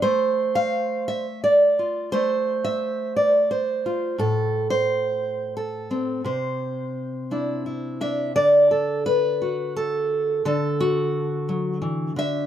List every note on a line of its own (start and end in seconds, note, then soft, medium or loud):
0.02 2.13 A3 medium
0.02 1.26 C5 loud
0.55 1.08 F5 loud
1.08 1.43 E5 medium
1.44 2.64 D5 medium
1.79 2.09 F4 soft
2.12 4.15 A3 medium
2.12 3.33 C5 loud
2.64 3.16 E5 medium
3.16 4.19 D5 medium
3.51 4.19 C5 medium
3.86 4.15 F4 medium
4.18 6.20 A2 medium
4.18 4.70 A4 medium
4.70 5.56 C5 medium
5.57 6.25 A4 medium
5.91 6.21 C4 medium
6.24 8.35 C3 medium
6.24 8.01 C5 medium
7.31 8.00 D4 soft
7.31 7.65 E4 soft
7.66 8.31 E4 soft
8.01 8.31 D4 soft
8.01 8.35 E5 medium
8.36 10.41 D3 medium
8.36 9.41 D5 loud
8.71 9.06 A4 medium
9.06 9.76 B4 medium
9.42 10.42 F#4 soft
9.76 10.44 A4 medium
10.45 12.15 D3 medium
10.45 11.49 A4 medium
10.80 12.46 F#4 medium
11.49 11.81 F#3 soft
11.82 12.16 E3 medium
12.16 12.46 D3 medium
12.16 12.46 E5 loud